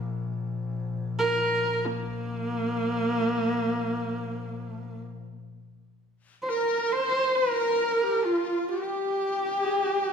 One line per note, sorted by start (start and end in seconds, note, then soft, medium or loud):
0.00 5.24 A#1 medium
1.19 1.87 A#4 loud
1.85 4.98 A#3 loud
6.42 6.50 C5 medium
6.49 6.94 A#4 medium
6.92 7.37 C5 loud
6.92 7.39 C5 medium
7.35 8.26 A#4 medium
7.35 8.05 A#4 medium
8.03 8.27 G4 medium
8.24 8.70 F4 medium
8.24 8.68 F4 medium
8.69 10.13 G4 medium
8.69 9.61 G4 medium
9.61 9.86 G#4 medium
9.86 10.13 G4 medium